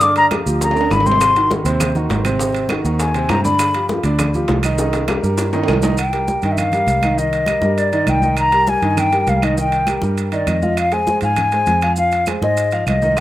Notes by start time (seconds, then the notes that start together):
Already playing: G2
0.01 D3 D4 D5 D6, high bongo, high conga, maracas
0.16 A#5, high bongo, high conga, high timbale, maracas
0.31 F3 F4 G4, high bongo, high conga, high timbale, low timbale, claves, maracas
0.46 D2 F3 F4 G4, high bongo, high conga, maracas
0.61 A#5, high bongo, high conga, high timbale, maracas
0.71 high timbale
0.76 D3 D4 D5, high bongo, high conga, maracas
0.81 high timbale
0.91 G#1 B5, high bongo, low bongo, high conga, low timbale, claves, maracas
1.00 low timbale
1.06 C3 C4 C5 C6, high conga, maracas
1.11 low timbale
1.21 high bongo, high timbale, claves, maracas
1.36 D#3 D#4 F#4, high conga, high timbale, maracas
1.51 D#3 D#4 F#4, high bongo, high conga, low timbale, maracas
1.65 D#2 C3 C4 C5, high timbale, maracas
1.80 high bongo, high conga, low conga, high timbale, claves, maracas
1.95 D#3 D#4 F#4, high conga, low conga, maracas
2.09 G#1, high bongo, low bongo, high conga, high timbale, low timbale, maracas
2.25 C3 C4 C5, high conga, high timbale, claves, maracas
2.39 C3 C4 C5, high bongo, high conga, maracas
2.54 high bongo, high conga, high timbale, maracas
2.69 D#3 D#4 F#4, high bongo, high conga, high timbale, low timbale, claves, maracas
2.84 D#2 D#3 D#4 F#4, high bongo, high conga, maracas
2.98 G#5, high bongo, high conga, high timbale, maracas
3.14 C3 C4 C5, high bongo, high conga, high timbale, maracas
3.29 G2 A#5, high bongo, low bongo, high conga, high timbale, low timbale, claves, maracas
3.44 D3 D4 D5 B5, high conga, maracas
3.59 high bongo, high conga, high timbale, claves, maracas
3.74 F3 F4 G4, high conga, high timbale, maracas
3.89 F3 F4 G4, high bongo, high conga, low timbale, maracas
4.03 D2 D3 D4 D5, high conga, high timbale, maracas
4.19 high bongo, high conga, low conga, high timbale, claves, maracas
4.34 F3 F4 G4, high conga, low conga, maracas
4.48 C2, high bongo, low bongo, high conga, high timbale, low timbale, maracas
4.63 D#3 D#4 D#5, high timbale, claves, maracas
4.78 D#3 D#4 D#5, high bongo, high conga, maracas
4.93 high bongo, high conga, high timbale, maracas
5.08 G3 G4 A#4, high bongo, high conga, high timbale, low timbale, claves, maracas
5.23 G2 G3 G4 A#4, high conga, maracas
5.38 low bongo, high conga, high timbale, maracas
5.53 D#3 D#4 D#5, low bongo, high conga, high timbale, maracas
5.63 high timbale
5.68 C2, low bongo, high conga, claves, maracas
5.73 low timbale
5.82 D#3 D#4 D#5, low bongo, high conga, low timbale, maracas
5.97 G5, high conga, high timbale, claves, maracas
6.13 G3 G4 A#4, high conga, high timbale, maracas
6.28 G3 G4 A#4, high conga, maracas
6.42 G2 D#3 D#4 D#5, high conga, high timbale, maracas
6.52 E5
6.57 F5, high conga, low conga, high timbale, claves, maracas
6.72 G3 G4 A#4, high conga, low conga, high timbale, maracas
6.87 C2, high conga, high timbale, maracas
7.01 D#3 D#4 D#5, high conga, high timbale, claves, maracas
7.17 D#3 D#4 D#5, high conga, maracas
7.31 high conga, high timbale, maracas
7.46 G3 G4 A#4, high conga, high timbale, claves, maracas
7.62 G2 G3 G4 A#4, high conga, maracas
7.77 D5, high conga, high timbale, maracas
7.92 D#3 D#4 D#5, high conga, high timbale, maracas
8.07 C2 G5, high conga, high timbale, claves, maracas
8.22 D#3 D#4 D#5, high conga, maracas
8.37 A#5, high conga, high timbale, claves, maracas
8.52 G3 G4 A#4, high conga, high timbale, maracas
8.67 G3 G4 A#4 G#5, high conga, maracas
8.82 G2 D#3 D#4 D#5, high conga, high timbale, maracas
8.97 G5, high conga, low conga, high timbale, claves, maracas
9.12 G3 G4 A#4, high conga, high timbale, maracas
9.27 C2 F5, high conga, high timbale, low timbale, maracas
9.42 D#3 D#4 D#5, high conga, high timbale, claves, maracas
9.57 D#3 D#4 D#5 G5, high conga, maracas
9.72 high conga, high timbale, maracas
9.87 G3 G4 A#4, high conga, high timbale, claves, maracas
10.02 G2 G3 G4 A#4, high conga, maracas
10.17 high conga, high timbale, maracas
10.32 D#3 D#4 D5 D#5, high conga, high timbale, maracas
10.47 F2 D#5, high conga, high timbale, claves, maracas
10.62 F3 F4 F5, high conga, maracas
10.77 F5, high timbale, claves, maracas
10.92 G#3 G#4 C5 G#5, high conga, high timbale, maracas
11.07 G#3 G#4 C5, high conga, maracas
11.21 G#2 F3 F4 F5 G#5, high conga, high timbale, maracas
11.36 high conga, low conga, high timbale, claves, maracas
11.52 G#3 G#4 C5, high conga, high timbale, maracas
11.66 F2, high conga, high timbale, maracas
11.81 F3 F4 F5, high timbale, claves, maracas
11.96 F3 F4 F5, high conga, maracas
12.11 high conga, high timbale, maracas
12.26 G#3 G#4 C5, high conga, high timbale, claves, maracas
12.42 G#2 G#3 G#4 C5 D#5, high conga, maracas
12.57 high conga, high timbale, maracas
12.71 F3 F4 F5, high conga, high timbale, maracas
12.87 C2 D#5, high conga, high timbale, low timbale, claves, maracas
13.02 D#3 D#4 D#5, high conga, maracas
13.17 high bongo, claves, maracas